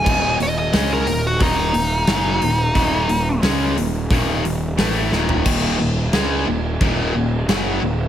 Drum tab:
CC |x---------------|----------------|x---x---x---x---|
HH |--o-o-o-o-o-o-o-|o-o-o-o-o-o-o---|----------------|
SD |----o-------o---|----o-------o-o-|----o-------o---|
FT |----------------|---------------o|----------------|
BD |o-------o-------|o-------o-------|o-------o-------|